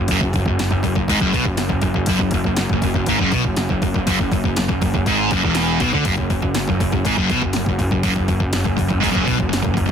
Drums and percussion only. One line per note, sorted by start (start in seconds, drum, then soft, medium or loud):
0.08 kick loud
0.08 open hi-hat medium
0.21 kick medium
0.33 kick medium
0.33 open hi-hat medium
0.46 kick medium
0.59 snare loud
0.59 open hi-hat medium
0.71 kick medium
0.83 kick medium
0.83 open hi-hat medium
0.95 kick medium
1.08 kick medium
1.08 open hi-hat medium
1.21 kick medium
1.33 kick medium
1.33 open hi-hat medium
1.45 kick medium
1.57 snare loud
1.57 open hi-hat medium
1.70 kick medium
1.82 kick medium
1.82 open hi-hat medium
1.94 kick medium
2.06 kick loud
2.06 open hi-hat medium
2.19 kick medium
2.31 kick medium
2.31 open hi-hat medium
2.44 kick medium
2.57 snare loud
2.57 open hi-hat medium
2.70 kick medium
2.82 kick medium
2.82 open hi-hat medium
2.94 kick medium
3.06 kick medium
3.06 open hi-hat medium
3.19 kick medium
3.32 kick medium
3.32 open hi-hat medium
3.44 kick medium
3.56 snare loud
3.56 open hi-hat medium
3.69 kick medium
3.82 kick medium
3.82 open hi-hat medium
3.94 kick medium
4.07 kick loud
4.07 open hi-hat medium
4.19 kick medium
4.32 kick medium
4.32 open hi-hat medium
4.44 kick medium
4.56 snare loud
4.56 open hi-hat medium
4.69 kick medium
4.82 kick medium
4.82 open hi-hat medium
4.94 kick medium
5.06 kick medium
5.06 open hi-hat medium
5.31 kick loud
5.31 open hi-hat soft
5.43 kick medium
5.55 snare loud
5.55 open hi-hat medium
5.80 kick loud
5.80 open hi-hat medium
5.93 kick medium
6.05 kick loud
6.05 open hi-hat medium
6.18 kick medium
6.30 kick medium
6.30 open hi-hat medium
6.42 kick medium
6.55 snare loud
6.55 open hi-hat medium
6.68 kick medium
6.80 kick medium
6.80 open hi-hat medium
6.92 kick medium
7.05 kick medium
7.05 open hi-hat medium
7.17 kick medium
7.30 kick medium
7.30 open hi-hat medium
7.42 kick medium
7.53 snare medium
7.53 open hi-hat medium
7.66 kick medium
7.79 kick medium
7.79 open hi-hat medium
7.91 kick medium
8.03 kick loud
8.03 open hi-hat medium
8.16 kick medium
8.28 kick medium
8.28 open hi-hat medium
8.40 kick medium
8.53 snare loud
8.53 open hi-hat medium
8.65 kick medium
8.78 kick medium
8.78 open hi-hat medium
8.90 kick medium
9.03 kick medium
9.03 open hi-hat medium
9.15 kick medium
9.27 kick medium
9.27 open hi-hat medium
9.40 kick medium
9.53 snare medium
9.53 open hi-hat medium
9.65 kick medium
9.77 kick medium
9.77 open hi-hat medium